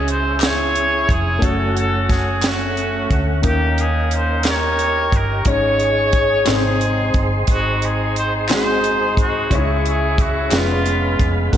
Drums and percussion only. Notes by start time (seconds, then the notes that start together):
0.08 closed hi-hat
0.40 snare, clap, closed hi-hat
0.75 closed hi-hat
1.09 kick, closed hi-hat
1.42 kick, closed hi-hat
1.77 closed hi-hat
2.10 kick, snare, closed hi-hat
2.42 snare, clap, closed hi-hat
2.77 closed hi-hat
3.11 kick, closed hi-hat
3.43 kick, closed hi-hat
3.78 closed hi-hat
4.11 closed hi-hat
4.43 snare, clap, closed hi-hat
4.79 closed hi-hat
5.12 kick, closed hi-hat
5.45 kick, closed hi-hat
5.80 closed hi-hat
6.13 kick, closed hi-hat
6.46 snare, clap, closed hi-hat
6.81 closed hi-hat
7.14 kick, closed hi-hat
7.47 kick, closed hi-hat
7.82 closed hi-hat
8.16 closed hi-hat
8.49 snare, clap, closed hi-hat
8.84 closed hi-hat
9.17 kick, closed hi-hat
9.51 kick, closed hi-hat
9.86 closed hi-hat
10.18 kick, closed hi-hat
10.51 snare, clap, closed hi-hat
10.86 closed hi-hat
11.19 kick, closed hi-hat
11.53 kick, closed hi-hat